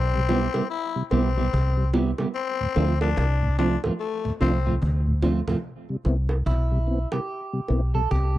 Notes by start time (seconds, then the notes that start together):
Already playing: B1 C4
0.13 C3 G3, cajon slap
0.29 G3 B3 C4 E4 G4, low bongo
0.54 C3 G3 B3 E4 G4, high bongo
0.70 E4, cajon slap
0.96 C3 G3
1.11 B1 G3 B3 C4 E4 G4, high bongo
1.37 C3 G3 B3 E4 G4
1.53 C2, cajon bass, cajon slap
1.77 C3 G3, cajon slap
1.94 G3 B3 C4 E4 G4, low bongo
2.18 C3 G3 B3 E4 G4, high bongo
2.35 C4, cajon slap
2.60 D2 A2, cajon slap
2.76 D2 F3 A3 C4 D4 F4, high bongo
3.01 F3 A3 C4 D4 F4, high bongo
3.17 C2, cajon bass, cajon slap, high bongo
3.42 D2 A2, cajon slap
3.58 F3 A3 C4 D4 F4, low bongo
3.84 D2 A2 F3 A3 C4 F4, high bongo
3.99 A3, cajon slap
4.25 D2 A2, cajon slap
4.41 C2 F3 A3 C4 D4 F4, cajon slap, high bongo
4.66 D2 A2 F3 A3 C4 F4
4.82 D2, cajon bass, cajon slap
5.07 D2 A2, cajon slap
5.22 F3 A3 C4 D4 F4, cajon bass, low bongo
5.48 D2 A2 F3 A3 C4 F4, cajon bass, high bongo
5.64 cajon slap
5.89 C3 G3, cajon slap
6.05 C2 B3 C4 E4, high bongo
6.29 high bongo
6.46 B1 E4, cajon bass, cajon slap
6.71 C3 G3, cajon slap
6.87 B3 C4 E4
7.12 C3 G3 G4, high bongo
7.28 cajon slap
7.53 C3 G3
7.68 B1 B3 C4 E4, high bongo
7.94 C3 G3 A4, cajon slap
8.11 C2 G4, cajon bass, cajon slap
8.35 C3